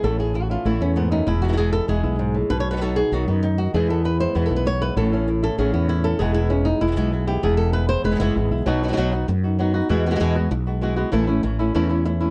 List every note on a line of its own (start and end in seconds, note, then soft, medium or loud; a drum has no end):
0.03 0.56 A1 medium
0.03 1.27 A2 medium
0.03 0.18 E3 medium
0.03 0.19 B3 medium
0.03 0.18 C#4 medium
0.03 0.17 E4 medium
0.03 0.19 A4 medium
0.19 0.33 B3 soft
0.19 0.33 C#4 soft
0.19 0.34 E4 soft
0.19 0.35 G#4 medium
0.34 0.50 F#4 medium
0.34 muted nylon-string guitar stroke medium
0.50 0.64 B3 soft
0.50 0.65 C#4 soft
0.50 0.65 E4 soft
0.50 0.66 F4 medium
0.65 0.78 A1 medium
0.65 0.80 E3 medium
0.65 1.25 A3 medium
0.65 0.80 B3 medium
0.65 0.80 C#4 medium
0.65 0.81 E4 medium
0.65 0.79 E4 medium
0.80 1.20 E2 medium
0.80 0.95 B3 soft
0.80 0.95 C#4 soft
0.80 0.97 C#4 medium
0.80 0.95 E4 soft
0.96 1.11 G#2 medium
0.96 1.11 B3 medium
0.96 muted nylon-string guitar stroke medium
1.11 1.26 F#2 medium
1.11 1.27 B3 soft
1.11 1.27 C#4 soft
1.11 1.27 D#4 medium
1.11 1.26 E4 soft
1.27 1.79 E1 medium
1.27 2.19 E2 medium
1.27 1.43 E4 medium
1.27 muted nylon-string guitar stroke medium
1.42 1.47 E3 soft
1.42 1.48 G#3 soft
1.42 1.48 B3 soft
1.42 1.48 E4 soft
1.42 1.58 F#4 medium
1.48 1.52 E3 medium
1.48 1.52 G#3 medium
1.48 1.52 B3 medium
1.48 1.53 E4 medium
1.53 1.56 E3 medium
1.53 1.57 G#3 medium
1.53 1.57 B3 medium
1.53 1.57 E4 medium
1.57 1.72 B2 medium
1.57 1.73 E3 medium
1.57 1.73 G#3 medium
1.57 1.73 B3 medium
1.57 1.72 E4 medium
1.57 1.72 G#4 medium
1.73 1.87 G#3 soft
1.73 1.88 B3 soft
1.73 1.88 E4 soft
1.73 1.88 A4 loud
1.88 2.02 E1 medium
1.88 2.03 B2 medium
1.88 2.03 E3 medium
1.88 2.48 G#3 medium
1.88 2.04 G#3 medium
1.88 2.03 B3 medium
1.88 2.02 E4 medium
1.88 2.35 G#4 medium
2.03 2.43 B1 medium
2.03 2.18 G#3 soft
2.03 2.18 B3 soft
2.03 2.18 E4 soft
2.19 2.35 G#2 medium
2.19 muted nylon-string guitar stroke medium
2.34 2.50 A2 medium
2.50 3.02 B1 medium
2.50 3.12 B2 medium
2.50 2.60 B4 medium
2.50 muted nylon-string guitar stroke medium
2.60 2.70 C#5 medium
2.71 2.75 F#3 soft
2.71 2.76 B3 soft
2.71 2.76 D#4 soft
2.71 2.77 F#4 soft
2.71 2.81 B4 medium
2.77 2.80 F#3 medium
2.77 2.81 B3 medium
2.77 2.81 D#4 medium
2.77 2.81 F#4 medium
2.81 2.96 B2 medium
2.81 2.96 F#3 medium
2.81 2.96 B3 medium
2.81 2.96 D#4 medium
2.81 2.96 F#4 medium
2.81 2.97 A4 medium
2.96 3.12 B3 soft
2.96 3.12 D#4 soft
2.96 3.11 F#4 soft
2.96 3.12 G#4 medium
3.12 3.25 B1 medium
3.12 3.27 B2 medium
3.12 3.72 D#3 medium
3.12 3.27 F#3 medium
3.12 3.27 B3 medium
3.12 3.27 D#4 medium
3.12 3.27 F#4 medium
3.12 3.26 F#4 medium
3.27 3.66 F#2 medium
3.27 3.43 B3 medium
3.27 3.43 B3 soft
3.27 3.43 D#4 soft
3.27 3.42 F#4 soft
3.43 3.58 D#4 medium
3.43 muted nylon-string guitar stroke soft
3.58 3.74 F#4 medium
3.74 4.26 E2 medium
3.74 4.97 E2 medium
3.74 3.89 B2 medium
3.74 3.89 E3 medium
3.74 3.89 G#3 medium
3.74 4.35 B3 soft
3.74 3.88 B3 medium
3.74 3.88 E4 medium
3.74 5.28 E4 soft
3.74 3.89 G#4 medium
3.89 4.04 G#3 soft
3.89 4.04 B3 soft
3.89 4.04 E4 soft
3.89 4.05 A4 medium
4.04 4.20 B4 medium
4.04 muted nylon-string guitar stroke medium
4.20 4.35 G#3 soft
4.20 4.35 B3 soft
4.20 4.35 E4 soft
4.20 4.36 C5 loud
4.35 4.48 E2 medium
4.35 4.50 B2 medium
4.35 4.50 E3 medium
4.35 4.50 G#3 medium
4.35 5.00 B3 medium
4.35 4.50 B3 medium
4.35 4.49 E4 medium
4.35 4.46 B4 medium
4.46 4.56 A4 medium
4.50 4.90 B1 medium
4.50 4.65 G#3 soft
4.50 4.65 B3 soft
4.50 4.65 E4 soft
4.56 4.66 B4 medium
4.66 4.82 C#5 loud
4.66 muted nylon-string guitar stroke medium
4.81 4.97 G#3 soft
4.81 4.96 B3 soft
4.81 4.96 E4 soft
4.81 4.97 B4 medium
4.96 5.49 A1 medium
4.96 6.20 A2 medium
4.96 5.12 E3 medium
4.96 5.12 B3 medium
4.96 5.12 C#4 medium
4.96 5.11 E4 medium
4.96 5.12 A4 medium
5.12 5.27 B3 soft
5.12 5.27 C#4 soft
5.12 5.28 C#4 soft
5.12 5.27 E4 soft
5.28 5.43 E4 medium
5.28 muted nylon-string guitar stroke medium
5.43 5.58 B3 soft
5.43 5.58 C#4 soft
5.43 5.58 E4 soft
5.43 5.58 A4 loud
5.58 5.71 A1 medium
5.58 5.73 E3 medium
5.58 5.74 B3 medium
5.58 6.18 C#4 medium
5.58 5.73 C#4 medium
5.58 5.72 E4 medium
5.58 5.73 G#4 medium
5.73 6.13 E2 medium
5.73 5.89 B3 medium
5.73 5.88 B3 soft
5.73 5.88 C#4 soft
5.73 5.88 E4 soft
5.89 6.05 E4 medium
5.89 muted nylon-string guitar stroke medium
6.04 6.20 B3 soft
6.04 6.20 C#4 soft
6.04 6.19 E4 soft
6.04 6.20 A4 loud
6.19 6.72 E1 medium
6.19 7.42 E2 medium
6.19 6.50 B2 medium
6.19 6.50 E3 medium
6.19 6.50 G#3 medium
6.19 6.81 G#3 soft
6.19 6.50 B3 medium
6.19 6.49 E4 medium
6.19 6.34 G#4 medium
6.34 6.50 E4 medium
6.50 6.80 G#3 soft
6.50 6.81 B3 soft
6.50 6.66 C#4 medium
6.50 6.81 E4 soft
6.65 6.81 D#4 medium
6.81 6.95 E1 medium
6.81 7.42 G#3 medium
6.81 7.12 E4 medium
6.81 muted nylon-string guitar stroke soft
6.87 6.91 E3 soft
6.87 6.91 G#3 soft
6.87 6.91 B3 soft
6.87 6.92 E4 soft
6.92 6.96 E3 medium
6.92 6.96 G#3 medium
6.92 6.96 B3 medium
6.92 6.96 E4 medium
6.96 7.36 B1 medium
6.96 7.11 B2 medium
6.96 7.11 E3 medium
6.96 7.11 G#3 medium
6.96 7.12 B3 medium
6.96 7.12 E4 medium
7.12 7.27 E3 soft
7.12 7.27 G#3 soft
7.12 7.27 B3 soft
7.12 7.26 E4 medium
7.27 7.43 G#3 soft
7.27 7.43 B3 soft
7.27 7.42 E4 soft
7.27 7.43 G4 medium
7.42 7.95 E1 medium
7.42 8.66 E2 medium
7.42 7.73 B2 medium
7.42 7.73 E3 medium
7.42 7.74 G#3 medium
7.42 7.73 B3 medium
7.42 7.72 E4 medium
7.42 7.57 G#4 medium
7.57 7.73 A4 loud
7.73 8.04 G#3 soft
7.73 8.04 B3 soft
7.73 8.04 E4 soft
7.73 7.88 B4 medium
7.89 8.05 C5 loud
8.04 8.18 E1 medium
8.04 8.64 G#3 medium
8.04 8.19 B4 medium
8.04 muted nylon-string guitar stroke soft
8.11 8.14 E3 soft
8.11 8.15 G#3 soft
8.11 8.15 B3 soft
8.11 8.16 E4 soft
8.16 8.19 E3 medium
8.16 8.20 G#3 medium
8.16 8.20 B3 medium
8.16 8.20 E4 medium
8.20 8.34 F#1 medium
8.20 8.35 B2 medium
8.20 8.34 E3 medium
8.20 8.35 G#3 medium
8.20 8.35 B3 medium
8.20 8.35 E4 loud
8.20 8.36 E4 medium
8.35 8.50 G#1 medium
8.35 8.50 E3 soft
8.35 8.51 G#3 soft
8.35 8.51 B3 soft
8.35 8.50 E4 medium
8.51 8.65 B1 medium
8.51 8.67 G#3 soft
8.51 8.67 B3 soft
8.51 8.66 E4 soft
8.66 8.92 B1 medium
8.66 8.96 B2 medium
8.66 8.97 B2 medium
8.66 8.82 F#3 medium
8.66 8.96 F#3 medium
8.66 8.83 B3 medium
8.66 8.97 B3 medium
8.66 8.83 D#4 medium
8.66 8.98 D#4 medium
8.66 8.83 F#4 medium
8.66 8.98 F#4 medium
8.83 8.87 F#3 soft
8.83 8.87 B3 medium
8.83 8.88 D#4 medium
8.83 8.88 F#4 medium
8.88 8.91 F#3 medium
8.88 8.92 B3 medium
8.88 8.92 D#4 medium
8.88 8.93 F#4 medium
8.93 8.96 F#3 medium
8.93 8.96 B3 medium
8.93 8.97 D#4 medium
8.93 8.97 F#4 medium
8.97 9.23 B1 medium
8.97 9.12 B2 medium
8.97 9.12 F#3 medium
8.97 9.12 F#3 soft
8.97 9.12 B3 medium
8.97 9.13 B3 soft
8.97 9.12 D#4 medium
8.97 9.13 D#4 soft
8.97 9.11 F#4 medium
8.97 9.12 F#4 soft
9.12 9.27 B3 soft
9.12 9.28 B3 soft
9.12 9.28 D#4 soft
9.12 9.27 F#4 soft
9.12 9.28 F#4 soft
9.28 9.80 F#2 medium
9.28 muted nylon-string guitar stroke soft
9.44 9.59 B3 soft
9.44 9.59 D#4 soft
9.44 9.59 F#4 soft
9.59 9.74 F#3 medium
9.59 9.74 B3 medium
9.59 9.90 B3 soft
9.59 9.74 D#4 medium
9.59 9.90 D#4 soft
9.59 9.89 F#4 soft
9.59 9.73 F#4 medium
9.74 9.89 B3 soft
9.74 9.89 D#4 soft
9.74 9.89 F#4 medium
9.89 10.16 E2 medium
9.89 10.19 B2 medium
9.89 10.20 B2 medium
9.89 10.05 E3 medium
9.89 10.19 E3 medium
9.89 10.05 G#3 medium
9.89 10.20 G#3 medium
9.89 10.06 B3 medium
9.89 10.21 B3 medium
9.89 10.06 F#4 medium
9.89 10.21 F#4 medium
10.06 10.10 E3 medium
10.06 10.10 G#3 soft
10.06 10.10 B3 medium
10.06 10.11 F#4 medium
10.11 10.14 E3 medium
10.11 10.15 G#3 medium
10.11 10.15 B3 medium
10.11 10.15 F#4 medium
10.15 10.19 E3 medium
10.15 10.19 G#3 medium
10.15 10.20 B3 medium
10.15 10.20 F#4 medium
10.20 10.47 E2 medium
10.20 10.35 B2 medium
10.20 10.35 E3 medium
10.20 10.35 E3 soft
10.20 10.35 G#3 medium
10.20 10.36 G#3 soft
10.20 10.35 B3 medium
10.20 10.36 B3 soft
10.20 10.34 F#4 medium
10.20 10.35 F#4 soft
10.36 10.50 G#3 soft
10.36 10.50 B3 soft
10.36 10.51 B3 soft
10.36 10.51 F#4 medium
10.36 10.51 F#4 soft
10.51 11.03 B1 medium
10.51 muted nylon-string guitar stroke medium
10.67 10.82 G#3 soft
10.67 10.82 B3 soft
10.67 10.81 F#4 soft
10.81 10.97 E3 soft
10.81 10.97 G#3 medium
10.81 11.13 G#3 soft
10.81 10.96 B3 medium
10.81 11.13 B3 soft
10.81 11.12 F#4 soft
10.81 10.95 F#4 medium
10.96 11.12 G#3 soft
10.96 11.12 B3 soft
10.96 11.12 F#4 soft
11.12 11.39 A1 loud
11.12 11.27 E3 medium
11.12 11.43 E3 medium
11.12 11.27 A3 medium
11.12 11.43 A3 medium
11.12 11.27 C#4 medium
11.12 11.44 C#4 medium
11.12 11.26 E4 medium
11.12 11.44 E4 medium
11.27 11.42 A3 soft
11.27 11.42 C#4 soft
11.27 11.43 E4 soft
11.43 11.70 A1 medium
11.43 11.59 E3 soft
11.43 11.59 A3 soft
11.43 11.59 C#4 soft
11.43 11.58 E4 soft
11.43 muted nylon-string guitar stroke medium
11.59 11.74 A3 soft
11.59 11.74 C#4 soft
11.59 11.74 E4 soft
11.74 12.27 E2 medium
11.74 11.89 E3 medium
11.74 11.90 A3 medium
11.74 11.89 C#4 medium
11.74 11.88 E4 medium
11.74 muted nylon-string guitar stroke soft
11.89 12.04 A3 soft
11.89 12.06 A3 soft
11.89 12.04 C#4 soft
11.89 12.05 C#4 soft
11.89 12.05 E4 soft
11.89 12.04 E4 soft
12.05 12.30 A3 soft
12.05 12.30 C#4 soft
12.05 12.30 E4 soft
12.05 muted nylon-string guitar stroke medium
12.21 12.30 A3 soft
12.21 12.30 C#4 soft
12.21 12.30 E4 medium